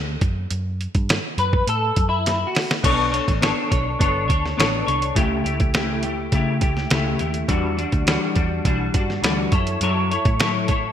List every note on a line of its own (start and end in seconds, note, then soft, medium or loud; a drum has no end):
0.00 0.16 D2 loud
0.21 0.45 F#2 medium
0.21 kick loud
0.21 closed hi-hat medium
0.51 0.86 F#2 loud
0.51 closed hi-hat loud
0.81 closed hi-hat medium
0.95 1.18 G2 medium
0.95 kick medium
0.95 closed hi-hat medium
1.09 snare loud
1.09 closed hi-hat medium
1.38 1.61 F#2 loud
1.38 1.66 B4 loud
1.38 closed hi-hat medium
1.53 kick medium
1.67 1.90 A2 medium
1.67 2.08 A4 loud
1.67 closed hi-hat medium
1.96 2.43 F#2 loud
1.96 kick medium
1.96 closed hi-hat medium
2.09 2.47 E4 medium
2.26 snare medium
2.26 closed hi-hat medium
2.47 2.73 F#4 medium
2.55 snare medium
2.55 open hi-hat medium
2.71 snare medium
2.83 3.19 B1 medium
2.83 3.13 B3 medium
2.83 3.13 D4 medium
2.83 3.12 A4 medium
2.83 3.10 C#5 medium
2.83 kick loud
2.83 closed hi-hat medium
2.83 crash medium
3.12 3.41 D4 soft
3.12 3.41 A4 soft
3.12 3.41 C#5 medium
3.12 closed hi-hat medium
3.28 3.51 A1 medium
3.28 kick medium
3.28 closed hi-hat medium
3.41 3.71 B3 medium
3.41 3.71 D4 medium
3.41 3.71 A4 medium
3.41 3.69 C#5 medium
3.41 snare loud
3.41 closed hi-hat medium
3.70 3.95 B1 loud
3.70 3.99 D4 soft
3.70 4.00 A4 soft
3.70 4.00 C#5 medium
3.70 kick medium
3.70 closed hi-hat medium
3.99 4.30 F#1 loud
3.99 4.29 B3 medium
3.99 4.29 D4 medium
3.99 4.28 A4 medium
3.99 4.27 C#5 medium
3.99 kick medium
3.99 closed hi-hat medium
4.28 4.53 D2 medium
4.28 4.57 D4 soft
4.28 4.57 A4 medium
4.28 4.57 C#5 medium
4.28 kick medium
4.28 closed hi-hat medium
4.46 snare soft
4.57 4.82 A1 medium
4.57 4.87 B3 medium
4.57 4.87 D4 medium
4.57 4.87 A4 medium
4.57 4.85 C#5 medium
4.57 snare loud
4.57 closed hi-hat medium
4.87 5.11 C2 medium
4.87 5.16 D4 medium
4.87 5.16 A4 medium
4.87 5.16 C#5 medium
4.87 closed hi-hat medium
5.02 closed hi-hat medium
5.15 5.40 C#2 medium
5.15 5.45 C#3 medium
5.15 5.45 A3 medium
5.15 5.44 E4 loud
5.15 5.43 G4 loud
5.15 kick loud
5.15 closed hi-hat medium
5.44 6.28 C#2 medium
5.44 5.74 A3 medium
5.44 5.74 E4 medium
5.44 5.74 G4 medium
5.44 closed hi-hat medium
5.60 kick medium
5.60 closed hi-hat medium
5.74 6.04 C#3 medium
5.74 6.04 A3 medium
5.74 6.03 E4 loud
5.74 6.02 G4 medium
5.74 snare loud
5.74 closed hi-hat medium
6.03 6.32 A3 medium
6.03 6.33 E4 soft
6.03 6.32 G4 medium
6.03 closed hi-hat medium
6.32 6.62 C#3 medium
6.32 6.63 C#3 loud
6.32 6.62 A3 medium
6.32 6.61 E4 medium
6.32 6.60 G4 medium
6.32 kick medium
6.32 closed hi-hat medium
6.61 6.85 C#2 medium
6.61 6.91 A3 soft
6.61 6.91 E4 medium
6.61 6.90 G4 medium
6.61 kick medium
6.61 closed hi-hat medium
6.77 snare soft
6.90 7.14 C#2 loud
6.90 7.20 C#3 medium
6.90 7.20 A3 medium
6.90 7.19 E4 loud
6.90 7.18 G4 loud
6.90 snare loud
6.90 closed hi-hat medium
7.19 7.43 D#2 medium
7.19 7.48 A3 soft
7.19 7.49 E4 medium
7.19 7.49 G4 medium
7.19 closed hi-hat medium
7.34 closed hi-hat medium
7.48 7.84 E2 loud
7.48 7.78 E3 medium
7.48 7.78 G3 medium
7.48 7.77 D4 loud
7.48 7.76 F#4 medium
7.48 kick loud
7.48 closed hi-hat medium
7.77 8.06 G3 soft
7.77 8.07 D4 medium
7.77 8.07 F#4 medium
7.77 closed hi-hat medium
7.92 8.16 D2 medium
7.92 kick medium
7.92 closed hi-hat medium
8.07 8.36 E3 medium
8.07 8.36 G3 medium
8.07 8.35 D4 loud
8.07 8.34 F#4 medium
8.07 snare loud
8.07 closed hi-hat medium
8.35 8.59 E2 medium
8.35 8.65 G3 medium
8.35 8.65 D4 medium
8.35 8.65 F#4 medium
8.35 kick medium
8.35 closed hi-hat medium
8.65 8.88 B1 loud
8.65 8.94 E3 medium
8.65 8.95 G3 medium
8.65 8.95 D4 medium
8.65 8.93 F#4 medium
8.65 kick medium
8.65 closed hi-hat medium
8.94 9.18 G2 medium
8.94 9.23 G3 soft
8.94 9.23 D4 medium
8.94 9.24 F#4 medium
8.94 kick medium
8.94 closed hi-hat medium
9.10 snare soft
9.22 9.46 D2 medium
9.22 9.52 E3 medium
9.22 9.53 G3 medium
9.22 9.53 D4 medium
9.22 9.53 F#4 loud
9.22 snare loud
9.22 closed hi-hat medium
9.52 9.75 F#2 loud
9.52 9.81 E4 soft
9.52 9.82 A4 medium
9.52 9.82 C#5 medium
9.52 kick loud
9.52 closed hi-hat medium
9.67 closed hi-hat medium
9.81 10.16 F#2 loud
9.81 10.11 F#3 medium
9.81 10.11 E4 medium
9.81 10.11 A4 medium
9.81 10.10 C#5 loud
9.81 closed hi-hat medium
10.11 10.39 E4 medium
10.11 10.39 A4 medium
10.11 10.40 C#5 medium
10.11 closed hi-hat medium
10.25 10.92 A2 medium
10.25 kick medium
10.25 closed hi-hat soft
10.39 10.69 F#3 medium
10.39 10.69 E4 medium
10.39 10.69 A4 medium
10.39 10.67 C#5 medium
10.39 snare loud
10.39 closed hi-hat medium
10.68 10.92 E4 soft
10.68 10.92 A4 medium
10.68 10.92 C#5 medium
10.68 kick medium
10.68 closed hi-hat medium